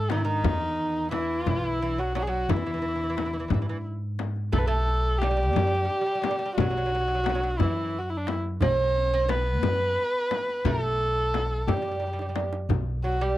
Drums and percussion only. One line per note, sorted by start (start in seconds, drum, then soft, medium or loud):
0.10 tombak tek medium
0.10 frame drum medium
0.44 frame drum medium
0.44 tombak dum medium
1.12 tombak tek medium
1.12 frame drum medium
1.47 frame drum medium
1.47 tombak dum medium
2.15 tombak tek medium
2.15 frame drum medium
2.34 tombak ka soft
2.49 frame drum medium
2.49 tombak dum loud
2.84 tombak ka soft
3.17 tombak tek medium
3.17 frame drum medium
3.50 frame drum medium
3.50 tombak dum medium
3.86 tombak ka soft
4.19 tombak tek medium
4.19 frame drum medium
4.36 tombak ka soft
4.53 frame drum medium
4.53 tombak dum medium
4.88 tombak ka soft
5.22 tombak tek medium
5.22 frame drum medium
5.56 frame drum medium
5.56 tombak dum medium
5.91 tombak ka soft
6.24 tombak tek medium
6.24 frame drum medium
6.42 tombak ka soft
6.58 frame drum medium
6.58 tombak dum medium
6.92 tombak ka soft
7.26 tombak tek medium
7.26 frame drum medium
7.59 tombak dum medium
7.59 frame drum medium
7.94 tombak ka soft
8.27 tombak tek medium
8.27 frame drum medium
8.45 tombak ka soft
8.61 tombak dum medium
8.61 frame drum medium
8.96 tombak ka soft
9.29 tombak tek medium
9.29 frame drum medium
9.63 frame drum medium
9.63 tombak dum medium
9.98 tombak ka soft
10.31 tombak tek medium
10.31 frame drum medium
10.49 tombak ka soft
10.65 frame drum medium
10.65 tombak dum medium
11.34 tombak tek medium
11.34 frame drum medium
11.68 frame drum medium
11.68 tombak dum medium
12.02 tombak tek soft
12.19 tombak ka medium
12.36 tombak tek medium
12.36 frame drum medium
12.53 tombak ka medium
12.70 frame drum medium
12.70 tombak dum medium
13.05 tombak ka soft